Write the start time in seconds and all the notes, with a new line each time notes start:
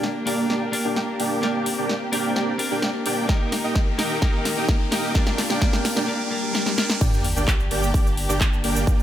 Already playing: G1 A#3 D4 G4 A#4, riser
0.03 snare
0.26 G1 A#3 D4 G4 A#4 D5 G5, open hi-hat
0.50 G1 A#3 D4 G4 D5 G5, snare
0.72 A#3 D4 G4 A#4, open hi-hat
0.85 G1 A#3 D4 G4 D5 G5
0.96 snare
1.20 G1 A#3 D4 G4 D5 G5, open hi-hat
1.42 G1 A#3 C4 D4 G4 A#4 D5 G5, snare
1.66 open hi-hat
1.78 G1 A#3 D4 G4 D5 G5
1.89 snare
2.12 G1 A#3 D4 G4 A#4 D5 G5, open hi-hat
2.36 G1 A#3 D4 G4 D5 G5, snare
2.58 A#3 D4 G4 A#4, open hi-hat
2.71 G1 A#3 D4 G4 D5 G5
2.82 snare
3.06 G1 A#3 D4 G4 D5 G5, open hi-hat
3.28 D#3 A#3 D#4 G4 A#4 D#5, kick, snare
3.52 snare, open hi-hat
3.64 A#3 D#4 G4 D#5 G5
3.76 kick, snare
3.98 A#3 D#4 G4 A#4 D#5 G5, snare, open hi-hat
4.21 A#3 D#4 G4 A#4 D#5, kick, snare
4.45 snare, open hi-hat
4.57 A#3 D#4 G4 D#5 G5
4.69 kick, snare
4.91 A#3 D#4 G4 A#4 D#5 G5, snare, open hi-hat
5.14 A#3 D4 F4 G4 A#4 D5, kick, snare
5.27 snare
5.38 snare, open hi-hat
5.50 A#1 A#3 D4 G4 D5 G5, snare
5.60 A#3 D4 G4 A#4 D5 G5, kick, snare
5.73 snare
5.85 snare, open hi-hat
5.96 A#1 A#3 D4 G4 D5 G5, snare
6.07 A#3 D4 G4 A#4, swell
6.30 A#3 D4 G4 A#4
6.53 A#3 D4 G4 A#4, snare
6.66 snare
6.77 A#3 D4 G4 A#4, snare
6.90 snare
7.01 G1 A#3 D4 G4 D5 G5, kick, crash, sub drop, shaker
7.14 shaker
7.24 open hi-hat
7.36 G1 A#3 D4 G4 D5 G5, shaker
7.48 kick, clap, shaker
7.60 shaker
7.71 G1 A#3 D4 G4 D5 G5, open hi-hat
7.83 shaker
7.94 G1 A#3 D4 G4 D5 G5, kick, open hi-hat, shaker
8.07 shaker
8.17 open hi-hat
8.29 G1 A#3 D4 G4 D5 G5, shaker
8.41 kick, clap, shaker
8.53 shaker
8.64 G1 A#3 D4 G4 D5 G5, open hi-hat
8.76 shaker
8.87 G1 A#3 D4 F4 G4 D5 G5, kick, shaker
9.00 shaker